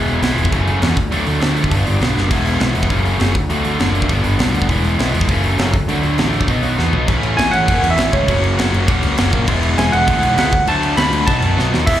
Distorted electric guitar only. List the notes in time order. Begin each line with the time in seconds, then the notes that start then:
Already playing: E3 G#3 B3 E4
0.23 E3 G#3 B3 E4
0.52 F#2 C#3 F#3 A3 C#4
0.81 F#2 C#3 F#3 A3 C#4
1.11 D3 F#3 A3 D4
1.40 D3 F#3 A3 D4
1.71 G2 D3 G3 B3 D4
2.00 G2 D3 G3 B3 D4
2.30 E3 G#3 B3 E4
2.59 E3 G#3 B3 E4
2.89 F#2 C#3 F#3 A3 C#4
3.19 F#2 C#3 F#3 A3 C#4
3.49 D3 F#3 A3 D4
3.79 D3 F#3 A3 D4
4.09 G2 D3 G3 B3 D4
4.39 G2 D3 G3 B3 D4
4.68 E3 G#3 B3 E4
4.99 E3 G#3 B3 E4
5.29 F#2 C#3 F#3 A3 C#4
5.59 F#2 C#3 F#3 A3 C#4
5.88 D3 F#3 A3 D4
6.19 D3 F#3 A3 D4
6.48 B2 F#3 B3 D#4
6.78 B2 F#3 B3 D#4
7.08 A2 E3 A3 C#4 E4
7.37 A2 E3 A3 C#4 E4
7.68 A2 E3 A3 C#4 E4
7.98 A2 E3 A3 C#4 E4
8.28 F#3 A#3 C#4 F#4
8.57 F#3 A#3 C#4 F#4
8.87 F#3 A#3 C#4 F#4
9.17 F#3 A#3 C#4 F#4
9.47 E3 G#3 B3 E4
9.78 E3 G#3 B3 E4
10.08 E3 G#3 B3 E4
10.37 E3 G#3 B3 E4
10.67 D3 F#3 A3 D4
10.97 D3 F#3 A3 D4
11.27 B2 F#3 B3 D#4
11.57 B2 F#3 B3 D#4
11.86 E3 G#3 B3 E4